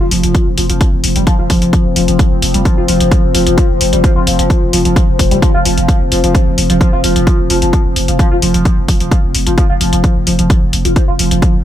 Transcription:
Already playing: ambient pad F3 C4
0.00 808-style bass F1, analog synth lead F4
0.11 808-style bass F1, analog synth lead F3, open hi-hat
0.23 808-style bass F1, analog synth lead F3, closed hi-hat
0.35 analog synth lead F3, kick, closed hi-hat
0.47 808-style bass F1
0.58 808-style bass F1, analog synth lead F3, open hi-hat
0.70 808-style bass F1, analog synth lead F3, closed hi-hat
0.81 analog synth lead F3, kick, closed hi-hat
0.93 808-style bass F1
1.04 808-style bass F1, open hi-hat
1.16 808-style bass F1, analog synth lead G3, closed hi-hat
1.27 analog synth lead F3, kick, closed hi-hat
1.39 808-style bass F1, analog synth lead F4
1.50 808-style bass F1, analog synth lead F3, kick, open hi-hat
1.62 808-style bass F1, analog synth lead F3, closed hi-hat
1.73 analog synth lead F3, kick, closed hi-hat
1.85 808-style bass F1
1.96 808-style bass F1, analog synth lead F3, open hi-hat
2.08 808-style bass F1, analog synth lead F3, closed hi-hat
2.19 analog synth lead F3, kick, closed hi-hat
2.31 808-style bass F1
2.42 808-style bass F1, open hi-hat
2.54 808-style bass F1, analog synth lead G3, closed hi-hat
2.65 analog synth lead F3, kick, closed hi-hat
2.77 808-style bass F1, analog synth lead F4
2.88 808-style bass F1, analog synth lead F3, open hi-hat
3.00 808-style bass F1, analog synth lead F3, closed hi-hat
3.12 analog synth lead F3, kick, closed hi-hat
3.24 808-style bass F1
3.35 808-style bass F1, analog synth lead F3, open hi-hat
3.47 808-style bass F1, analog synth lead F3, closed hi-hat
3.58 analog synth lead F3, kick, closed hi-hat
3.70 808-style bass F1
3.81 808-style bass F1, open hi-hat
3.93 808-style bass F1, analog synth lead G3, closed hi-hat
4.04 analog synth lead F3, kick, closed hi-hat
4.16 808-style bass F1, analog synth lead F4
4.27 808-style bass F1, analog synth lead F3, open hi-hat
4.39 808-style bass F1, analog synth lead F3, closed hi-hat
4.50 analog synth lead F3, kick, closed hi-hat
4.62 808-style bass F1
4.73 808-style bass F1, analog synth lead F3, open hi-hat
4.85 808-style bass F1, analog synth lead F3, closed hi-hat
4.96 analog synth lead F3, kick, closed hi-hat
5.08 808-style bass F1
5.19 808-style bass F1, kick, open hi-hat
5.31 808-style bass F1, analog synth lead G3, closed hi-hat
5.42 analog synth lead F3, kick, closed hi-hat
5.54 808-style bass F1, analog synth lead F4
5.65 808-style bass F1, analog synth lead F3, open hi-hat
5.77 808-style bass F1, analog synth lead F3, closed hi-hat
5.89 analog synth lead F3, kick, closed hi-hat
6.01 808-style bass F1
6.12 808-style bass F1, analog synth lead F3, open hi-hat
6.24 808-style bass F1, analog synth lead F3, closed hi-hat
6.35 kick, closed hi-hat
6.47 808-style bass F1
6.58 808-style bass F1, open hi-hat
6.70 808-style bass F1, analog synth lead F3, closed hi-hat
6.81 analog synth lead F3, kick, closed hi-hat
6.93 808-style bass F1, analog synth lead F4
7.04 808-style bass F1, analog synth lead F3, open hi-hat
7.16 808-style bass F1, analog synth lead F3, closed hi-hat
7.27 analog synth lead F3, kick, closed hi-hat
7.39 808-style bass F1
7.50 808-style bass F1, analog synth lead F3, open hi-hat
7.62 808-style bass F1, analog synth lead F3, closed hi-hat
7.73 analog synth lead F3, kick, closed hi-hat
7.85 808-style bass F1
7.96 808-style bass F1, open hi-hat
8.08 808-style bass F1, analog synth lead F3, closed hi-hat
8.19 analog synth lead F3, kick, closed hi-hat
8.31 808-style bass F1, analog synth lead F4
8.42 808-style bass F1, analog synth lead F3, open hi-hat
8.54 808-style bass F1, analog synth lead F3, closed hi-hat
8.65 analog synth lead F3, kick, closed hi-hat
8.77 808-style bass F1
8.88 808-style bass F1, analog synth lead F3, kick, open hi-hat
9.00 808-style bass F1, analog synth lead F3, closed hi-hat
9.11 analog synth lead F3, kick, closed hi-hat
9.24 808-style bass F1
9.35 808-style bass F1, open hi-hat
9.47 808-style bass F1, analog synth lead F3, closed hi-hat
9.58 analog synth lead F3, kick, closed hi-hat
9.70 808-style bass F1, analog synth lead F4
9.81 808-style bass F1, analog synth lead F3, open hi-hat
9.93 808-style bass F1, analog synth lead F3, closed hi-hat
10.04 analog synth lead F3, kick, closed hi-hat
10.16 808-style bass F1
10.27 808-style bass F1, analog synth lead F3, open hi-hat
10.39 808-style bass F1, analog synth lead F3, closed hi-hat
10.50 analog synth lead F3, kick, closed hi-hat
10.62 808-style bass F1
10.73 808-style bass F1, open hi-hat
10.85 808-style bass F1, analog synth lead F3, closed hi-hat
10.96 analog synth lead F3, kick, closed hi-hat
11.08 808-style bass F1, analog synth lead F4
11.19 808-style bass F1, analog synth lead F3, open hi-hat
11.31 808-style bass F1, analog synth lead F3, closed hi-hat
11.42 analog synth lead F3, kick, closed hi-hat
11.54 808-style bass F1

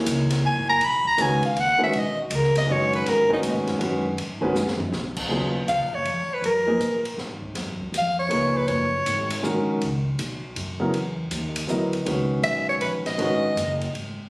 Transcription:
Already playing: grand piano A#3 D#4 E4 G#4 C#5
0.06 upright bass C#2, hi-hat pedal, ride
0.30 snare, ride
0.45 upright bass A#1, soprano saxophone G#5
0.57 upright bass G#1
0.69 upright bass F#1, soprano saxophone A#5
0.81 upright bass B1, soprano saxophone B5, ride
1.05 soprano saxophone A#5, kick
1.17 upright bass C#2, grand piano D#3 G#3 C#4 F#4 B4, hi-hat pedal, ride
1.21 soprano saxophone G#5
1.43 soprano saxophone F5, muted upright bass stroke, ride
1.56 upright bass D#2, ride
1.60 soprano saxophone F#5
1.78 grand piano D#3 G#3 C#4 F#4 B4
1.83 soprano saxophone E5
1.93 upright bass B1, ride
1.99 soprano saxophone D#5
2.22 soprano saxophone F#4
2.30 upright bass C#2, hi-hat pedal, ride
2.35 soprano saxophone A#4
2.44 snare
2.55 soprano saxophone D#5, snare, ride
2.67 upright bass F#2, grand piano D#3 G#3 C#4 F#4 B4
2.72 soprano saxophone C#5
2.93 soprano saxophone B4, ride
3.04 upright bass G#2, snare, ride
3.09 soprano saxophone A#4
3.29 grand piano D#3 G#3 C#4 F#4 B4, kick
3.33 soprano saxophone D#4
3.43 upright bass A#2, hi-hat pedal, ride
3.56 upright bass G#2
3.67 upright bass F#2, snare, ride
3.79 upright bass F#2, grand piano D#3 G#3 C#4 F#4 B4, ride
4.17 upright bass G#2, ride
4.41 grand piano D#3 G#3 C#4 F#4 B4, kick
4.55 upright bass F#2, snare, hi-hat pedal
4.68 snare
4.80 floor tom
4.92 upright bass B1, snare
5.17 kick, crash
5.29 upright bass D#2, grand piano C#3 F#3 B3 F4 G#4
5.67 upright bass C#2, soprano saxophone F5, hi-hat pedal, ride
5.80 upright bass A#1
5.93 upright bass F#1, soprano saxophone C#5
6.05 upright bass F2, ride
6.28 muted upright bass stroke
6.34 soprano saxophone B4
6.42 upright bass F#2, soprano saxophone A#4, ride
6.66 grand piano F3 A#3 D#4 G#4 B4
6.79 upright bass A#2, hi-hat pedal, ride
7.05 ride
7.17 upright bass G#2, snare
7.42 kick
7.55 upright bass F#2, snare, ride
7.80 kick
7.92 upright bass F2, hi-hat pedal, ride
7.97 soprano saxophone F5
8.19 soprano saxophone C#5
8.29 upright bass C#2, grand piano A#2 F3 D#4 G#4 B4, ride
8.57 soprano saxophone B4
8.67 upright bass F#1, soprano saxophone C#5, ride
9.06 upright bass G#1, hi-hat pedal, ride
9.30 ride
9.43 upright bass A#1, grand piano D#3 G#3 C#4 F#4 A#4, hi-hat pedal
9.81 upright bass C#2, ride
10.19 upright bass B1, hi-hat pedal, ride
10.56 upright bass F#2, ride
10.80 grand piano C#3 F#3 B3 E4 A#4
10.94 upright bass E2, ride
11.31 upright bass D#2, hi-hat pedal, ride
11.56 ride
11.67 upright bass D2, grand piano F#3 B3 E4 A#4 D#5, hi-hat pedal
11.93 ride
12.05 upright bass C#2, grand piano D#3 G#3 C#4 F#4 B4, ride
12.43 upright bass B1, soprano saxophone E5, hi-hat pedal, ride
12.69 soprano saxophone C#5
12.80 upright bass A#1, soprano saxophone B4, ride
13.06 soprano saxophone D#5, snare, ride
13.18 upright bass G#1, grand piano D#3 G#3 C#4 F#4 B4, ride
13.55 upright bass F#1, hi-hat pedal, ride
13.81 ride
13.93 upright bass G#1, ride

